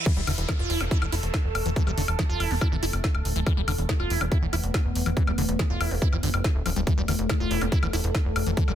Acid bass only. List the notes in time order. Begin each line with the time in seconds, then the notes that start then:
0.06 E3
0.17 G3
0.27 D3
0.49 E3
0.59 F4
0.70 E4
0.81 G3
0.91 E4
1.02 E3
1.12 E4
1.66 E3
1.76 E3
1.87 G3
1.98 D3
2.19 E3
2.29 F4
2.40 E4
2.51 G3
2.61 E4
2.72 E3
2.83 E4
3.36 E3
3.47 E3
3.57 G3
3.68 D3
3.89 E3
4.00 F4
4.10 E4
4.21 G3
4.32 E4
4.42 E3
4.53 E4
5.06 E3
5.17 E3
5.27 G3
5.38 D3
5.59 E3
5.70 F4
5.81 E4
5.91 G3
6.02 E4
6.12 E3
6.23 D3
6.66 F3
6.76 G3
6.87 E3
6.98 G3
7.08 D3
7.30 E3
7.40 F4
7.51 E4
7.61 G3
7.72 E4
7.83 E3
7.93 E4
8.47 E3
8.57 E3
8.68 G3